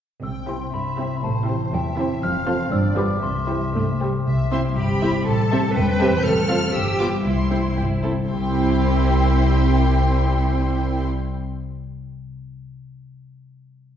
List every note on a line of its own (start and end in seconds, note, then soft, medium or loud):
0.23 0.63 C2 soft
0.23 0.63 C3 soft
0.23 1.26 C3 soft
0.23 0.71 G5 soft
0.23 0.47 E6 soft
0.49 0.67 C4 soft
0.49 0.98 C4 soft
0.49 0.67 E4 soft
0.49 0.67 G4 soft
0.49 0.67 C5 soft
0.49 0.72 C6 soft
0.73 1.13 G2 soft
0.73 1.73 G4 soft
0.73 1.23 E5 soft
0.73 1.14 B5 soft
0.99 1.17 C4 soft
0.99 2.74 C4 soft
0.99 1.17 E4 soft
0.99 1.17 G4 soft
0.99 1.17 C5 soft
1.17 1.24 B5 soft
1.23 1.63 A1 soft
1.23 1.63 A2 soft
1.23 2.25 A2 soft
1.23 1.73 C5 soft
1.23 1.70 A5 medium
1.48 1.97 E3 soft
1.48 1.67 C4 soft
1.48 1.67 E4 soft
1.48 1.67 G4 soft
1.48 1.68 C5 soft
1.73 2.12 E2 medium
1.73 2.25 G4 soft
1.73 2.23 E5 soft
1.73 2.20 G5 medium
1.98 2.25 E3 soft
1.98 2.16 C4 medium
1.98 2.16 E4 soft
1.98 2.16 G4 soft
1.98 2.17 C5 soft
2.22 2.62 F1 medium
2.22 2.61 F2 medium
2.22 2.74 F2 medium
2.22 2.72 F5 medium
2.22 2.69 F6 medium
2.47 2.66 C4 medium
2.47 2.66 F4 soft
2.47 2.96 F4 soft
2.47 2.66 A4 soft
2.47 2.66 C5 medium
2.47 2.74 C5 soft
2.72 3.12 G1 medium
2.72 3.12 G2 medium
2.72 3.25 G2 medium
2.72 3.23 D5 medium
2.72 2.95 E6 medium
2.97 3.17 G3 medium
2.97 3.25 F4 soft
2.97 3.17 F4 medium
2.97 3.17 G4 soft
2.97 3.25 B4 soft
2.97 3.17 B4 soft
2.97 3.14 D6 medium
3.16 3.23 D6 soft
3.23 3.64 C2 soft
3.23 4.26 C3 soft
3.23 3.64 C3 soft
3.23 3.99 E5 soft
3.23 3.71 C6 medium
3.49 3.69 G3 soft
3.49 4.00 C4 soft
3.49 3.69 E4 soft
3.49 3.68 G4 soft
3.49 3.68 C5 soft
3.75 4.16 G2 soft
3.75 3.83 A3 soft
3.75 4.59 E4 soft
4.01 4.10 G3 soft
4.01 5.10 C4 soft
4.01 4.20 G4 soft
4.01 4.20 C5 soft
4.27 4.66 C2 medium
4.27 5.29 C3 soft
4.27 4.50 E5 medium
4.44 4.93 G3 soft
4.52 4.60 C4 soft
4.52 4.60 E4 soft
4.52 4.60 G4 soft
4.52 4.60 E5 soft
4.52 4.60 C6 medium
4.61 5.59 E4 soft
4.76 5.16 G1 medium
4.76 5.23 G4 medium
4.76 5.75 C5 soft
4.76 5.26 B5 medium
4.94 5.43 G3 soft
5.02 5.10 C4 soft
5.02 5.10 E4 soft
5.02 5.10 G4 soft
5.02 5.10 E5 soft
5.11 6.76 C4 soft
5.27 5.65 A1 medium
5.27 6.27 A2 medium
5.27 5.75 A4 medium
5.27 5.75 A5 medium
5.44 5.91 G3 soft
5.51 5.60 C4 soft
5.51 5.60 G4 medium
5.51 5.59 A4 soft
5.51 5.59 E5 soft
5.60 6.27 E4 soft
5.76 6.14 E1 medium
5.76 6.24 B4 medium
5.76 6.57 C5 soft
5.76 6.17 G5 medium
5.92 6.26 G3 soft
5.99 6.08 C4 medium
5.99 6.08 G4 medium
5.99 6.07 A4 soft
5.99 6.07 E5 soft
6.08 6.26 E3 soft
6.18 6.25 G6 medium
6.24 6.63 F1 medium
6.24 6.76 F2 medium
6.24 6.74 A4 medium
6.24 6.74 F6 medium
6.42 6.76 A3 soft
6.48 6.57 C4 medium
6.48 6.57 F4 soft
6.48 6.56 A4 soft
6.48 6.57 F5 medium
6.58 7.07 F4 soft
6.58 6.76 C5 soft
6.74 7.14 G1 medium
6.74 7.27 G2 medium
6.74 7.24 G4 medium
6.74 6.99 E6 medium
6.90 7.42 G3 soft
6.99 7.08 B3 soft
6.99 7.08 F4 soft
6.99 7.07 G4 soft
6.99 7.07 G5 soft
6.99 7.07 D6 medium
7.08 7.27 F4 soft
7.08 7.28 B4 soft
7.25 7.66 C2 soft
7.25 8.28 C3 soft
7.25 8.02 E4 soft
7.25 7.77 C6 medium
7.43 7.94 G3 soft
7.51 7.59 C4 soft
7.51 7.59 E4 soft
7.51 7.59 G4 soft
7.51 7.59 G5 soft
7.60 8.49 E4 soft
7.77 8.19 G1 medium
7.77 7.85 G4 soft
7.95 8.35 G3 soft
8.03 8.11 C4 soft
8.03 8.11 E4 soft
8.03 8.12 A4 soft
8.12 8.42 C4 soft
8.28 11.04 C2 medium
8.28 12.19 C3 soft
8.28 11.05 C4 soft
8.28 11.05 E4 medium
8.28 11.04 G4 medium
8.28 11.04 G5 medium
8.28 11.04 C6 medium
8.36 11.93 G3 soft
8.43 11.81 C4 soft
8.50 11.85 E4 soft
8.57 11.88 C5 soft
8.64 11.92 E5 soft